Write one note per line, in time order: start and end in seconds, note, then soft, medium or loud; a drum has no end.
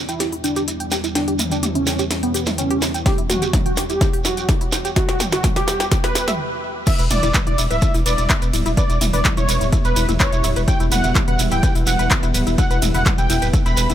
0.00 6.39 E2 medium
0.00 6.35 G3 medium
0.00 6.35 B3 medium
0.00 6.35 E4 medium
0.00 3.02 B4 medium
0.00 6.35 E5 medium
0.08 0.30 E4 loud
0.08 0.15 G5 medium
0.08 closed hi-hat soft
0.08 shekere soft
0.20 0.27 G4 medium
0.20 snare soft
0.20 closed hi-hat medium
0.20 shekere soft
0.32 0.36 E4 medium
0.32 open hi-hat medium
0.44 0.66 D4 medium
0.44 0.50 G5 medium
0.44 open hi-hat medium
0.44 shekere medium
0.56 0.62 G4 loud
0.56 closed hi-hat soft
0.56 shekere soft
0.68 0.72 E4 medium
0.68 closed hi-hat medium
0.68 shekere soft
0.80 0.86 G5 medium
0.80 closed hi-hat soft
0.91 0.98 G4 loud
0.91 snare medium
0.91 open hi-hat medium
0.91 shekere medium
1.04 1.08 E4 medium
1.04 closed hi-hat soft
1.04 shekere soft
1.15 1.37 D4 medium
1.15 1.22 G5 medium
1.15 snare medium
1.15 closed hi-hat medium
1.15 shekere soft
1.28 1.34 G4 loud
1.28 closed hi-hat soft
1.39 1.43 E4 medium
1.39 mid tom medium
1.39 open hi-hat loud
1.39 shekere medium
1.51 1.66 D4 medium
1.51 1.58 G5 medium
1.51 closed hi-hat soft
1.51 shekere soft
1.63 1.69 G4 loud
1.63 closed hi-hat medium
1.63 mid tom medium
1.63 shekere soft
1.75 2.04 C#4 medium
1.75 1.79 E4 medium
1.75 closed hi-hat soft
1.87 1.93 G5 medium
1.87 snare medium
1.87 open hi-hat loud
1.87 shekere medium
1.99 2.05 G4 loud
1.99 closed hi-hat soft
1.99 shekere medium
2.10 2.14 E4 medium
2.10 snare medium
2.10 closed hi-hat medium
2.10 shekere soft
2.23 2.45 B3 loud
2.23 2.29 G5 medium
2.23 closed hi-hat soft
2.34 2.41 G4 loud
2.34 open hi-hat loud
2.34 shekere medium
2.46 2.50 E4 medium
2.46 snare medium
2.46 closed hi-hat soft
2.46 mid tom medium
2.46 shekere soft
2.58 2.87 C#4 medium
2.58 2.65 G5 medium
2.58 closed hi-hat medium
2.58 shekere soft
2.71 2.77 G4 loud
2.71 closed hi-hat soft
2.82 2.86 E4 medium
2.82 snare medium
2.82 open hi-hat loud
2.82 shekere medium
2.94 3.00 G5 medium
2.94 closed hi-hat soft
2.94 shekere medium
3.06 3.12 G4 loud
3.06 3.21 G4 loud
3.06 6.36 C#5 medium
3.06 kick loud
3.06 snare medium
3.06 closed hi-hat medium
3.06 shekere soft
3.18 3.22 E4 medium
3.18 closed hi-hat soft
3.30 3.51 F#4 loud
3.30 3.36 G5 medium
3.30 snare medium
3.30 mid tom medium
3.30 open hi-hat loud
3.30 shekere medium
3.42 3.48 G4 loud
3.42 closed hi-hat soft
3.42 shekere medium
3.53 3.57 E4 medium
3.53 kick loud
3.53 snare medium
3.53 closed hi-hat medium
3.53 mid tom medium
3.53 shekere soft
3.66 3.80 F#4 medium
3.66 3.72 G5 medium
3.66 closed hi-hat soft
3.77 3.84 G4 loud
3.77 snare medium
3.77 open hi-hat loud
3.77 shekere medium
3.89 3.93 E4 medium
3.89 4.11 G4 loud
3.89 closed hi-hat soft
3.89 shekere medium
4.01 4.08 G5 medium
4.01 kick loud
4.01 snare medium
4.01 closed hi-hat medium
4.01 shekere soft
4.13 4.19 G4 loud
4.13 open hi-hat medium
4.25 4.29 E4 medium
4.25 4.47 F#4 medium
4.25 snare medium
4.25 open hi-hat loud
4.25 shekere loud
4.37 4.43 G5 medium
4.37 closed hi-hat soft
4.37 shekere soft
4.49 4.55 G4 loud
4.49 kick loud
4.49 snare medium
4.49 closed hi-hat medium
4.49 shekere soft
4.61 4.65 E4 medium
4.61 closed hi-hat soft
4.72 4.79 G5 medium
4.72 snare medium
4.72 open hi-hat loud
4.72 shekere loud
4.85 4.91 G4 loud
4.85 closed hi-hat soft
4.85 shekere medium
4.96 5.00 E4 medium
4.96 5.18 F#4 loud
4.96 kick loud
4.96 snare medium
4.96 closed hi-hat medium
4.96 shekere soft
5.09 5.15 G5 medium
5.09 snare medium
5.09 closed hi-hat soft
5.20 5.27 G4 loud
5.20 snare medium
5.20 mid tom medium
5.20 open hi-hat loud
5.20 shekere medium
5.32 5.36 E4 medium
5.32 5.47 F#4 medium
5.32 snare medium
5.32 closed hi-hat soft
5.32 shekere medium
5.43 5.50 G5 medium
5.43 kick loud
5.43 snare loud
5.43 closed hi-hat medium
5.43 mid tom loud
5.43 shekere soft
5.56 5.62 G4 loud
5.56 5.85 G4 loud
5.56 snare medium
5.56 closed hi-hat soft
5.68 5.72 E4 medium
5.68 snare loud
5.68 open hi-hat loud
5.68 shekere medium
5.80 5.86 G5 medium
5.80 snare medium
5.80 closed hi-hat soft
5.80 shekere medium
5.92 5.98 G4 loud
5.92 kick loud
5.92 snare loud
5.92 closed hi-hat medium
5.92 shekere soft
6.04 6.08 E4 medium
6.04 6.26 B4 loud
6.04 snare medium
6.04 closed hi-hat soft
6.15 6.22 E4 loud
6.15 snare loud
6.15 open hi-hat loud
6.15 shekere loud
6.28 6.34 E5 loud
6.28 snare medium
6.28 closed hi-hat soft
6.28 mid tom medium
6.28 shekere medium
6.86 13.94 E2 medium
6.86 13.94 G3 medium
6.86 13.94 B3 medium
6.86 13.94 E4 medium
6.86 6.93 E4 loud
6.86 13.94 B4 medium
6.86 7.02 E5 loud
6.86 13.94 E5 medium
6.86 6.93 E5 medium
6.86 kick loud
6.86 closed hi-hat medium
6.86 crash loud
6.86 shekere medium
6.99 7.08 E1 medium
6.99 7.05 B4 loud
6.99 7.05 B5 medium
6.99 closed hi-hat soft
6.99 shekere soft
7.10 7.20 E1 loud
7.10 7.20 E4 medium
7.10 7.32 D5 loud
7.10 7.20 E5 medium
7.10 mid tom medium
7.10 open hi-hat loud
7.10 ride medium
7.10 shekere medium
7.23 7.32 E1 medium
7.23 7.29 E4 loud
7.23 7.29 E5 medium
7.23 closed hi-hat soft
7.23 shekere soft
7.34 7.41 B4 loud
7.34 7.41 B5 medium
7.34 kick loud
7.34 clap loud
7.34 closed hi-hat medium
7.34 mid tom medium
7.34 shekere medium
7.47 7.56 E1 medium
7.47 7.56 E4 medium
7.47 7.61 D5 medium
7.47 7.56 E5 medium
7.47 closed hi-hat soft
7.58 7.68 E1 loud
7.58 7.65 E4 loud
7.58 7.65 E5 medium
7.58 open hi-hat loud
7.58 ride medium
7.58 shekere loud
7.71 7.80 D1 loud
7.71 7.77 B4 loud
7.71 7.92 E5 loud
7.71 7.77 B5 medium
7.71 closed hi-hat soft
7.71 shekere soft
7.82 7.92 E4 medium
7.82 7.92 E5 medium
7.82 kick loud
7.82 closed hi-hat medium
7.82 shekere medium
7.94 8.03 E1 medium
7.94 8.00 E4 loud
7.94 8.00 E5 medium
7.94 open hi-hat medium
7.94 shekere soft
8.06 8.15 E1 loud
8.06 8.12 B4 loud
8.06 8.28 D5 loud
8.06 8.12 B5 medium
8.06 open hi-hat loud
8.06 ride medium
8.06 shekere loud
8.18 8.27 E1 medium
8.18 8.27 E4 medium
8.18 8.27 E5 medium
8.18 closed hi-hat soft
8.18 shekere soft
8.29 8.36 E4 loud
8.29 8.36 E5 medium
8.29 kick loud
8.29 clap loud
8.29 closed hi-hat medium
8.29 shekere medium
8.42 8.51 E1 medium
8.42 8.48 B4 loud
8.42 8.48 B5 medium
8.42 closed hi-hat soft
8.42 shekere soft
8.53 8.63 D1 loud
8.53 8.63 E4 medium
8.53 8.63 E5 medium
8.53 open hi-hat loud
8.53 ride medium
8.53 shekere medium
8.66 8.75 E1 medium
8.66 8.72 E4 loud
8.66 8.72 E5 medium
8.66 closed hi-hat soft
8.66 shekere soft
8.77 8.84 B4 loud
8.77 8.99 D5 loud
8.77 8.84 B5 medium
8.77 kick loud
8.77 closed hi-hat medium
8.77 shekere medium
8.90 8.99 E1 medium
8.90 8.99 E4 medium
8.90 8.99 E5 medium
8.90 closed hi-hat soft
8.90 shekere soft
9.01 9.11 E1 loud
9.01 9.07 E4 loud
9.01 9.08 E5 medium
9.01 mid tom medium
9.01 open hi-hat loud
9.01 ride medium
9.01 shekere medium
9.13 9.22 E1 medium
9.13 9.19 B4 loud
9.13 9.28 D5 medium
9.13 9.19 B5 medium
9.13 open hi-hat medium
9.13 shekere soft
9.25 9.35 E4 medium
9.25 9.34 E5 medium
9.25 kick loud
9.25 clap loud
9.25 closed hi-hat medium
9.25 mid tom medium
9.25 shekere soft
9.37 9.46 E1 medium
9.37 9.43 E4 loud
9.37 9.66 C#5 loud
9.37 9.43 E5 medium
9.37 closed hi-hat soft
9.37 shekere soft
9.49 9.58 E1 loud
9.49 9.55 B4 loud
9.49 9.55 B5 medium
9.49 open hi-hat loud
9.49 ride medium
9.49 shekere medium
9.61 9.70 D1 loud
9.61 9.70 E4 medium
9.61 9.70 E5 medium
9.61 closed hi-hat soft
9.61 shekere soft
9.72 9.79 E4 loud
9.72 9.79 E5 medium
9.72 kick loud
9.72 closed hi-hat medium
9.72 shekere medium
9.85 9.94 E1 medium
9.85 9.91 B4 loud
9.85 10.06 B4 loud
9.85 9.91 B5 medium
9.85 closed hi-hat soft
9.85 shekere soft
9.96 10.06 E1 loud
9.96 10.06 E4 medium
9.96 10.06 E5 medium
9.96 open hi-hat loud
9.96 ride medium
9.96 shekere loud
10.09 10.18 E1 medium
10.09 10.15 E4 loud
10.09 10.15 E5 medium
10.09 closed hi-hat soft
10.09 mid tom medium
10.09 shekere soft
10.20 10.27 B4 loud
10.20 10.49 C#5 loud
10.20 10.27 B5 medium
10.20 kick loud
10.20 clap loud
10.20 closed hi-hat medium
10.20 shekere medium
10.32 10.41 E1 medium
10.32 10.41 E4 medium
10.32 10.41 E5 medium
10.32 closed hi-hat soft
10.32 shekere soft
10.44 10.54 D1 loud
10.44 10.50 E4 loud
10.44 10.50 E5 medium
10.44 open hi-hat loud
10.44 ride medium
10.44 shekere loud
10.56 10.65 E1 medium
10.56 10.62 B4 loud
10.56 10.62 B5 medium
10.56 closed hi-hat soft
10.56 shekere soft
10.68 10.77 E4 medium
10.68 10.77 E5 medium
10.68 10.83 G5 loud
10.68 kick loud
10.68 closed hi-hat medium
10.68 shekere medium
10.80 10.89 E1 medium
10.80 10.86 E4 loud
10.80 10.86 E5 medium
10.80 closed hi-hat soft
10.80 shekere soft
10.92 11.01 E1 loud
10.92 10.98 B4 loud
10.92 11.13 F#5 loud
10.92 10.98 B5 medium
10.92 mid tom medium
10.92 open hi-hat loud
10.92 ride medium
10.92 shekere medium
11.04 11.13 E1 medium
11.04 11.13 E4 medium
11.04 11.13 E5 medium
11.04 closed hi-hat soft
11.04 shekere soft
11.15 11.22 E4 loud
11.15 11.22 E5 medium
11.15 kick loud
11.15 clap loud
11.15 closed hi-hat medium
11.15 mid tom medium
11.15 shekere soft
11.28 11.37 E1 medium
11.28 11.34 B4 loud
11.28 11.42 F#5 medium
11.28 11.34 B5 medium
11.28 closed hi-hat soft
11.39 11.49 E1 loud
11.39 11.49 E4 medium
11.39 11.49 E5 medium
11.39 open hi-hat loud
11.39 ride medium
11.39 shekere medium
11.51 11.61 D1 medium
11.51 11.58 E4 loud
11.51 11.58 E5 medium
11.51 11.73 G5 loud
11.51 closed hi-hat soft
11.51 shekere soft
11.63 11.69 B4 loud
11.63 11.69 B5 medium
11.63 kick loud
11.63 closed hi-hat medium
11.63 shekere medium
11.75 11.84 E1 medium
11.75 11.84 E4 medium
11.75 11.84 E5 medium
11.75 open hi-hat medium
11.75 shekere soft
11.87 11.96 E1 loud
11.87 11.93 E4 loud
11.87 11.93 E5 medium
11.87 12.09 F#5 medium
11.87 open hi-hat loud
11.87 ride medium
11.87 shekere loud
11.99 12.08 E1 medium
11.99 12.05 B4 loud
11.99 12.05 B5 medium
11.99 closed hi-hat soft
11.99 shekere soft
12.10 12.20 E4 medium
12.10 12.20 E5 medium
12.10 kick loud
12.10 clap loud
12.10 closed hi-hat medium
12.10 shekere medium
12.23 12.32 E1 medium
12.23 12.29 E4 loud
12.23 12.29 E5 medium
12.23 closed hi-hat soft
12.23 shekere soft
12.34 12.44 D1 loud
12.34 12.41 B4 loud
12.34 12.41 B5 medium
12.34 open hi-hat loud
12.34 ride medium
12.34 shekere medium
12.47 12.56 E1 medium
12.47 12.56 E4 medium
12.47 12.56 E5 medium
12.47 closed hi-hat soft
12.47 shekere soft
12.58 12.65 E4 loud
12.58 12.65 E5 medium
12.58 12.80 F#5 medium
12.58 kick loud
12.58 closed hi-hat medium
12.58 shekere medium
12.71 12.80 E1 medium
12.71 12.77 B4 loud
12.71 12.77 B5 medium
12.71 closed hi-hat soft
12.71 shekere soft
12.82 12.92 E1 loud
12.82 12.92 E4 medium
12.82 12.92 E5 medium
12.82 mid tom medium
12.82 open hi-hat loud
12.82 ride medium
12.82 shekere medium
12.94 13.03 E1 medium
12.94 13.00 E4 loud
12.94 13.00 E5 medium
12.94 13.09 F#5 medium
12.94 open hi-hat medium
12.94 shekere soft
13.06 13.12 B4 loud
13.06 13.12 B5 medium
13.06 kick loud
13.06 clap loud
13.06 closed hi-hat medium
13.06 mid tom loud
13.06 shekere medium
13.18 13.27 E1 medium
13.18 13.27 E4 medium
13.18 13.27 E5 medium
13.18 13.47 G5 medium
13.18 closed hi-hat soft
13.18 shekere soft
13.30 13.39 E1 loud
13.30 13.36 E4 loud
13.30 13.36 E5 medium
13.30 open hi-hat loud
13.30 ride medium
13.30 shekere medium
13.42 13.51 D1 medium
13.42 13.48 B4 loud
13.42 13.48 B5 medium
13.42 closed hi-hat soft
13.42 shekere soft
13.54 13.63 E4 medium
13.54 13.63 E5 medium
13.54 kick loud
13.54 closed hi-hat medium
13.54 shekere medium
13.66 13.75 E1 medium
13.66 13.72 E4 loud
13.66 13.72 E5 medium
13.66 13.87 B5 loud
13.66 closed hi-hat soft
13.66 shekere soft
13.77 13.87 E1 loud
13.77 13.84 B4 loud
13.77 13.84 B5 medium
13.77 open hi-hat loud
13.77 ride medium
13.77 shekere loud
13.90 13.94 E1 medium
13.90 13.94 E4 medium
13.90 13.94 E5 medium
13.90 closed hi-hat soft
13.90 mid tom medium
13.90 shekere soft